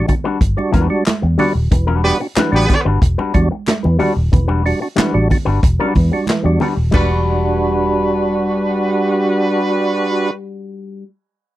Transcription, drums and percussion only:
0.08 kick medium
0.08 closed hi-hat medium
0.08 low conga medium
0.41 kick loud
0.41 closed hi-hat medium
0.41 muted conga soft
0.58 muted conga soft
0.74 kick medium
0.74 closed hi-hat medium
0.74 high conga medium
1.06 snare loud
1.06 clap loud
1.06 closed hi-hat medium
1.06 muted conga soft
1.06 high conga medium
1.39 open hi-hat medium
1.39 low conga medium
1.72 kick loud
1.72 closed hi-hat loud
2.05 open hi-hat medium
2.36 snare loud
2.36 clap loud
2.36 closed hi-hat loud
2.36 muted conga soft
2.36 high conga medium
2.54 muted conga soft
2.69 kick medium
2.69 closed hi-hat medium
2.69 low conga medium
3.02 kick loud
3.02 closed hi-hat medium
3.02 muted conga soft
3.19 muted conga soft
3.34 kick medium
3.34 closed hi-hat medium
3.34 high conga medium
3.67 snare loud
3.67 clap medium
3.67 closed hi-hat medium
3.67 muted conga soft
3.67 high conga medium
3.84 muted conga soft
4.00 open hi-hat medium
4.00 low conga medium
4.33 kick loud
4.33 closed hi-hat medium
4.33 low conga medium
4.49 muted conga soft
4.66 open hi-hat medium
4.97 snare loud
4.97 clap loud
4.97 closed hi-hat loud
4.97 muted conga soft
4.97 high conga medium
4.99 clap loud
5.30 kick medium
5.30 open hi-hat medium
5.30 low conga medium
5.63 kick loud
5.63 closed hi-hat loud
5.63 muted conga soft
5.95 kick medium
5.95 open hi-hat medium
5.95 high conga medium
6.27 snare loud
6.27 clap medium
6.27 closed hi-hat medium
6.27 high conga medium
6.30 clap medium
6.60 open hi-hat medium
6.60 low conga medium
6.92 kick loud
6.92 clap medium
6.92 crash medium
6.92 high conga medium

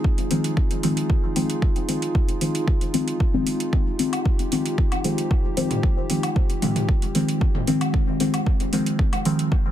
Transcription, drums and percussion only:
0.04 kick loud
0.18 closed hi-hat soft
0.31 open hi-hat medium
0.44 closed hi-hat soft
0.57 kick loud
0.71 closed hi-hat soft
0.83 open hi-hat medium
0.97 closed hi-hat medium
1.10 kick loud
1.36 open hi-hat medium
1.50 closed hi-hat medium
1.62 kick loud
1.76 closed hi-hat soft
1.89 open hi-hat medium
2.02 closed hi-hat soft
2.15 kick loud
2.29 closed hi-hat soft
2.41 open hi-hat medium
2.55 closed hi-hat soft
2.68 kick loud
2.81 closed hi-hat soft
2.94 open hi-hat medium
3.08 closed hi-hat soft
3.20 kick loud
3.47 open hi-hat medium
3.60 closed hi-hat soft
3.73 kick loud
3.99 open hi-hat medium
4.13 closed hi-hat soft
4.13 low woodblock medium
4.25 kick loud
4.39 closed hi-hat soft
4.52 open hi-hat medium
4.66 closed hi-hat soft
4.78 kick loud
4.92 closed hi-hat soft
4.92 low woodblock medium
5.04 open hi-hat medium
5.18 closed hi-hat soft
5.31 kick loud
5.57 open hi-hat medium
5.71 closed hi-hat soft
5.71 mid tom medium
5.83 kick loud
6.10 open hi-hat medium
6.23 closed hi-hat soft
6.23 low woodblock medium
6.36 kick loud
6.50 closed hi-hat soft
6.62 mid tom medium
6.62 open hi-hat medium
6.76 closed hi-hat soft
6.76 mid tom medium
6.89 kick loud
7.02 closed hi-hat soft
7.15 open hi-hat medium
7.29 closed hi-hat soft
7.41 kick loud
7.55 mid tom medium
7.67 open hi-hat medium
7.81 closed hi-hat soft
7.81 low woodblock medium
7.94 kick loud
8.20 open hi-hat medium
8.34 closed hi-hat soft
8.34 low woodblock medium
8.46 kick loud
8.60 closed hi-hat soft
8.73 open hi-hat medium
8.86 closed hi-hat soft
8.99 kick loud
9.13 closed hi-hat soft
9.13 low woodblock medium
9.25 open hi-hat medium
9.39 closed hi-hat soft
9.52 kick loud

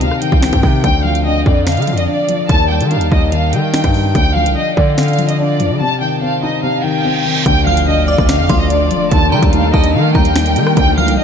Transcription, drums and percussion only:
0.01 closed hi-hat medium
0.11 cross-stick medium
0.22 closed hi-hat medium
0.32 kick medium
0.42 finger snap medium
0.42 snare loud
0.53 kick medium
0.53 closed hi-hat medium
0.63 kick loud
0.84 kick loud
0.84 closed hi-hat medium
1.15 closed hi-hat medium
1.46 kick loud
1.67 finger snap medium
1.67 snare loud
1.67 closed hi-hat medium
1.72 closed hi-hat medium
1.77 closed hi-hat medium
1.82 closed hi-hat soft
1.87 closed hi-hat medium
1.98 closed hi-hat medium
2.29 closed hi-hat medium
2.49 kick loud
2.49 closed hi-hat medium
2.81 closed hi-hat medium
2.91 closed hi-hat soft
3.01 closed hi-hat medium
3.12 kick loud
3.32 closed hi-hat medium
3.53 closed hi-hat medium
3.74 finger snap medium
3.74 snare loud
3.84 kick medium
3.84 closed hi-hat medium
3.94 open hi-hat medium
4.15 kick loud
4.15 closed hi-hat medium
4.46 closed hi-hat medium
4.77 kick medium
4.98 finger snap medium
4.98 snare loud
4.98 closed hi-hat medium
5.03 closed hi-hat medium
5.08 closed hi-hat medium
5.13 closed hi-hat soft
5.18 closed hi-hat medium
5.29 closed hi-hat medium
5.60 closed hi-hat medium
7.46 kick loud
7.46 closed hi-hat medium
7.77 closed hi-hat medium
8.18 kick loud
8.29 finger snap medium
8.29 snare loud
8.29 closed hi-hat medium
8.49 kick medium
8.49 closed hi-hat medium
8.70 closed hi-hat medium
8.91 closed hi-hat medium
9.11 kick loud
9.11 closed hi-hat medium
9.43 kick loud
9.43 closed hi-hat medium
9.53 closed hi-hat medium
9.74 kick loud
9.84 closed hi-hat medium
10.15 kick medium
10.25 closed hi-hat medium
10.36 finger snap medium
10.36 snare loud
10.46 closed hi-hat medium
10.56 closed hi-hat medium
10.67 cross-stick loud
10.77 kick loud
10.77 closed hi-hat medium
11.08 closed hi-hat medium

